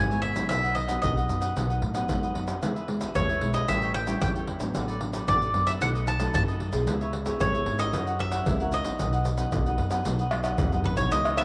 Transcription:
Already playing: G#1 G#2 G#5
0.10 G#3 B3 E4 B4 C#5 E5, pandeiro, shaker
0.22 E4 B4 C#5 E5, pandeiro
0.35 C#2 F#3 B3 D#4, pandeiro, shaker, surdo
0.49 B1 B2 F#4 B4 D#5 E5 F#5, pandeiro, shaker, surdo
0.63 B4 D#5 F#5, pandeiro, shaker
0.75 D#5, muted cavaquinho stroke, pandeiro
0.88 F#3 B3 D#4 B4 D#5 F#5, pandeiro, shaker, surdo
1.02 B1 F#4 B4 D#5 F#5, pandeiro, shaker, surdo
1.16 B4 D#5 F#5, pandeiro, shaker
1.29 F#2 F#3 B3 D#4, pandeiro, shaker
1.41 B4 D#5 F#5, pandeiro, shaker, surdo
1.55 B1 B2 F#3 B3 D#4 F#4 B4 D#5 F#5, pandeiro, shaker, surdo
1.69 B4 D#5 F#5, pandeiro, shaker
1.82 A2, muted cavaquinho stroke, pandeiro
1.94 F#3 B3 D#4 B4 D#5 F#5, pandeiro, shaker, surdo
2.09 G#2 F#3 F#4 B4 D#5 F#5, pandeiro, shaker, surdo
2.23 B4 D#5 F#5, pandeiro, shaker
2.34 F#2 F#3 B3 D#4 F#4 B4 D#5 F#5, pandeiro
2.48 pandeiro, shaker, surdo
2.62 E2 E3 G#3 B3 E4 G#4 B4 E5, pandeiro, shaker, surdo
2.76 G#4 B4 E5, pandeiro, shaker
2.88 G#3 B3 E4, muted cavaquinho stroke, pandeiro
3.01 G#4 B4 E5, pandeiro, shaker, surdo
3.15 E2 B2 G#3 B3 E4 G#4 B4 C#5 E5, pandeiro, shaker, surdo
3.29 G#4 B4 E5, pandeiro, shaker
3.41 B1 G#3 B3 E4, pandeiro
3.54 G#4 B4 D#5 E5, pandeiro, shaker, surdo
3.68 A1 A2 G3 C#4 E4 A4 C#5 E5 G5, pandeiro, shaker, surdo
3.82 A4 C#5 G5, pandeiro, shaker
3.94 G5, pandeiro
4.07 G3 C#4 E4 A4 C#5 G5, pandeiro, shaker, surdo
4.21 E2 E3 E4 A4 C#5 G5, pandeiro, shaker, surdo
4.35 A4 C#5 G5, pandeiro, shaker
4.47 E4 A4 C#5 G5, pandeiro
4.60 A2 F#3 B3 D4, pandeiro, shaker, surdo
4.74 A1 A2 F#4 A4 B4 D5, pandeiro, shaker, surdo
4.88 A4 B4 D5, pandeiro, shaker
5.01 F#3 B3 D4, muted cavaquinho stroke, pandeiro
5.13 A4 B4 D5, pandeiro, shaker, surdo
5.27 A1 A2 F#4 A4 B4 D5, pandeiro, shaker, surdo
5.41 A4 B4 D5, pandeiro, shaker
5.54 F#2 F#3 B3 D4, pandeiro
5.66 A4 B4 D5 E5, pandeiro, shaker, surdo
5.80 B1 B2 F#3 A3 D#4 A4 B4 D#5 F#5, pandeiro, shaker, surdo
5.94 A4 B4 D#5, pandeiro, shaker
6.06 A5, muted cavaquinho stroke, pandeiro, shaker
6.19 F#3 A3 D#4 A4 B4 D#5, pandeiro, shaker, surdo
6.34 F#2 D#4 A4 B4 D#5 A5, pandeiro, shaker, surdo
6.48 A4 B4 D#5, pandeiro, shaker
6.59 D#4 A4 B4 D#5, pandeiro
6.72 B1 B3 E4 G#4, pandeiro, shaker, surdo
6.87 C#2 C#3 E4 B4 C#5 E5, pandeiro, shaker, surdo
7.01 B4 C#5 E5, pandeiro, shaker
7.13 muted cavaquinho stroke, pandeiro
7.25 B3 E4 G#4 B4 C#5 E5, pandeiro, shaker, surdo
7.40 C#2 G#2 E4 B4 C#5 E5, pandeiro, shaker, surdo
7.53 B3 E4 G#4 B4 C#5 E5, pandeiro, shaker
7.66 G#1, pandeiro
7.78 C#4 E4 A#4 B4 C#5 D#5 E5, pandeiro, shaker, surdo
7.93 F#2 F#3 E4 A#4 C#5 F#5, pandeiro, shaker, surdo
8.07 A#4 C#5 F#5, pandeiro, shaker
8.19 C#4 E4 A#4 E5, muted cavaquinho stroke, pandeiro, surdo
8.31 A#4 C#5 F#5, pandeiro, shaker, surdo
8.46 C#2 C#3 E4 A#4 C#5 F#5, pandeiro, shaker, surdo
8.60 C#4 E4 A#4 C#5 F#5, pandeiro, shaker
8.72 E4 A#4 C#5 D#5 F#5, pandeiro, shaker
8.85 F#3 B3 D#4, pandeiro, shaker, surdo
8.99 B1 B2 F#4 B4 D#5 F#5, pandeiro, shaker, surdo
9.12 B4 D#5 F#5, pandeiro, shaker
9.25 muted cavaquinho stroke, pandeiro, shaker
9.37 F#3 B3 D#4 B4 D#5 F#5, pandeiro, shaker, surdo
9.52 B1 F#2 F#4 B4 D#5 F#5, pandeiro, shaker, surdo
9.66 F#3 B3 D#4 B4 D#5 F#5, pandeiro, shaker
9.78 F#2, pandeiro
9.90 F#3 B3 D#4 B4 D#5 F#5, pandeiro, shaker, surdo
10.05 B1 B2 F#3 B3 D#4 F#4 B4 D#5 F#5, pandeiro, shaker, surdo
10.19 B4 D#5 F#5, pandeiro, shaker
10.31 F#3 B3 D#4, pandeiro, tamborim
10.43 B4 D#5 F#5, pandeiro, tamborim, shaker, surdo
10.58 F#2 F#4 B4 D#5 F#5, surdo, pandeiro, shaker
10.72 F#3 B3 D#4 B4 D#5 F#5, surdo, pandeiro, shaker
10.84 F#4 B4 D#5 F#5, pandeiro, surdo
10.97 B1 E3 B3 D#4 C#5, pandeiro, shaker, surdo
11.11 C#2 C#3 E4 B4 C#5 D#5 E5, pandeiro, shaker, surdo
11.24 B4 C#5 E5, pandeiro, tamborim, shaker
11.37 E3 B3 D#4 E5, muted cavaquinho stroke, pandeiro, tamborim, shaker

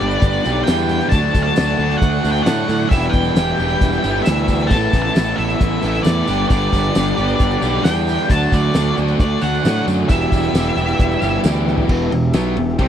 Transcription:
Already playing: G3 A3 D4 G4 B4 D5
0.00 G1 G3 B3 D4 G4, closed hi-hat
0.11 closed hi-hat
0.22 G1, kick, closed hi-hat, tambourine
0.34 closed hi-hat
0.45 B1 G3 B3 D4 G4, snare, closed hi-hat, tambourine
0.64 G2 D3 G5, closed hi-hat, tambourine
0.68 E2 G3 B3 D4 G4, snare
0.79 closed hi-hat
0.89 closed hi-hat, tambourine
1.01 closed hi-hat
1.09 D2 D3 F#3 A3 D4 F#4 D5 A5, kick, closed hi-hat, tambourine
1.14 D4 F#4
1.35 D2, kick, closed hi-hat, tambourine
1.43 A5
1.56 D2 D3 F#3 A3 D4 F#4, snare, closed hi-hat, tambourine
1.79 D2 A3 D4 F#4, closed hi-hat
1.91 closed hi-hat
1.98 F#5
2.02 D2, kick, closed hi-hat, tambourine
2.23 D2 A3 D4 F#4, snare, closed hi-hat, tambourine
2.32 G5
2.36 closed hi-hat
2.43 A2 D3 F#3 A3 D4 F#5, closed hi-hat, tambourine
2.47 F#4, snare
2.68 A2, closed hi-hat, tambourine
2.89 E1 E2 B2 E3 G3 B3 G4 E5, kick, closed hi-hat, tambourine
2.93 B3 E4 G4 E5
3.02 closed hi-hat
3.10 G5, closed hi-hat
3.14 E1, kick
3.24 closed hi-hat
3.36 E1 E3 G3 B3 E4 G4, snare, closed hi-hat, tambourine
3.48 closed hi-hat
3.58 E1 E3 G3 B3 E4 G4, closed hi-hat
3.70 closed hi-hat
3.81 E1, kick, closed hi-hat, tambourine
3.93 closed hi-hat
4.03 G1 E3 G3 B3 E4 G4, closed hi-hat, tambourine
4.22 E2 B2 E5, tambourine
4.26 D2 E3 G3 B3 E4 G4, snare, closed hi-hat
4.38 closed hi-hat
4.48 kick, closed hi-hat, tambourine
4.60 closed hi-hat
4.67 A2 A5, kick, tambourine, crash
4.71 A1 E3 A3 B3 E4 A4 E5
4.93 A1, kick, closed hi-hat, tambourine
5.02 A5
5.15 A1 E3 A3 B3 E4 A4, snare, closed hi-hat, tambourine
5.36 A1 A3 B3 E4 A4 E5, closed hi-hat
5.50 closed hi-hat
5.60 A1, kick, closed hi-hat, tambourine
5.82 A1 A3 B3 E4 A4, snare, closed hi-hat, tambourine
5.95 snare, closed hi-hat
6.03 E2 A2 E3 A3 A4 D5, snare, closed hi-hat, tambourine
6.07 B3 E4
6.26 G1 G2 D3 G3 B3 D4 G4 A4 D5, closed hi-hat, tambourine
6.49 G1 G2 D3 G3 B3 D4 G4 D5, kick, closed hi-hat, tambourine
6.61 closed hi-hat
6.72 G1, kick, closed hi-hat, tambourine
6.84 closed hi-hat
6.95 G1 G3 B3 D4 G4, snare, closed hi-hat, tambourine
7.07 closed hi-hat
7.17 G1 G3 B3 D4 G4, closed hi-hat
7.29 closed hi-hat
7.40 G1, kick, closed hi-hat, tambourine
7.51 closed hi-hat
7.62 B1 G3 B3 D4 G4, snare, closed hi-hat, tambourine
7.75 snare
7.84 E2 G2 D3 G3 B3 D4 G4 G5, snare, closed hi-hat, tambourine
7.96 closed hi-hat
8.07 closed hi-hat, tambourine
8.18 closed hi-hat
8.28 D2 D3 F#3 A3 D4 F#4 D5 A5, kick, closed hi-hat, tambourine
8.33 F#4
8.52 D2 D5, kick, closed hi-hat, tambourine
8.74 D2 D3 F#3 A3 D4 F#4, snare, closed hi-hat, tambourine
8.97 D2 A3 D4 F#4, closed hi-hat
9.08 closed hi-hat
9.20 D2 D5, kick, closed hi-hat, tambourine
9.41 D2 A3 D4 F#4 F#5, snare, closed hi-hat, tambourine
9.55 closed hi-hat
9.64 A2 D3 F#3 A3 D4 F#4, snare, closed hi-hat, tambourine
9.87 F#2, closed hi-hat, tambourine
10.08 E1 E2 B2 E3 G3 B3 E4 G4 E5, kick, closed hi-hat, tambourine
10.13 G4
10.21 closed hi-hat
10.32 E1, kick, closed hi-hat, tambourine
10.44 closed hi-hat
10.54 E1 E3 G3 B3 E4 G4, snare, closed hi-hat, tambourine
10.66 closed hi-hat
10.77 E1 E3 G3 B3 E4 G4, closed hi-hat, tambourine
10.88 closed hi-hat
10.99 E1, kick, closed hi-hat, tambourine
11.11 closed hi-hat
11.22 G1 E3 G3 B3 E4 G4, snare, closed hi-hat, tambourine
11.43 D2 E2 B2 E3 G3 B3 E4 G4, snare, closed hi-hat, tambourine
11.56 closed hi-hat
11.68 snare
11.78 floor tom
11.89 E1 E2 B2 E3 B3 E4 G4 E5, kick, crash
12.12 E1 E2 B2, ride
12.33 B1 B2 F#3 B3, snare, ride, tambourine
12.56 E1 E2 B2, ride
12.69 snare
12.78 C2 C3 G3 C4 G4 C5 G5, kick, ride

